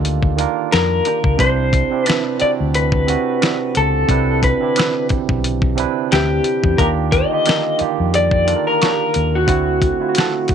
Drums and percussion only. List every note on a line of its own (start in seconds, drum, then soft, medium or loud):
0.05 closed hi-hat medium
0.23 kick medium
0.38 closed hi-hat medium
0.72 snare loud
0.72 closed hi-hat medium
1.05 closed hi-hat medium
1.24 kick medium
1.39 kick loud
1.39 closed hi-hat medium
1.73 kick loud
1.73 closed hi-hat medium
2.06 snare loud
2.06 closed hi-hat loud
2.40 closed hi-hat medium
2.74 closed hi-hat medium
2.92 kick medium
3.08 closed hi-hat medium
3.42 snare loud
3.42 closed hi-hat medium
3.75 closed hi-hat medium
4.09 kick loud
4.09 closed hi-hat medium
4.43 kick medium
4.43 closed hi-hat medium
4.76 snare loud
4.76 closed hi-hat medium
5.09 kick medium
5.09 closed hi-hat medium
5.29 kick medium
5.44 closed hi-hat medium
5.62 kick loud
5.78 closed hi-hat medium
6.12 snare loud
6.12 closed hi-hat medium
6.44 closed hi-hat medium
6.64 kick medium
6.78 kick loud
6.78 closed hi-hat medium
7.12 kick medium
7.12 closed hi-hat medium
7.46 snare loud
7.46 closed hi-hat medium
7.79 closed hi-hat medium
8.14 closed hi-hat medium
8.31 kick medium
8.48 closed hi-hat medium
8.82 snare loud
8.82 closed hi-hat medium
9.14 closed hi-hat medium
9.48 kick loud
9.48 closed hi-hat medium
9.82 kick medium
9.82 closed hi-hat medium
10.15 snare loud
10.15 closed hi-hat medium
10.48 kick medium
10.48 closed hi-hat soft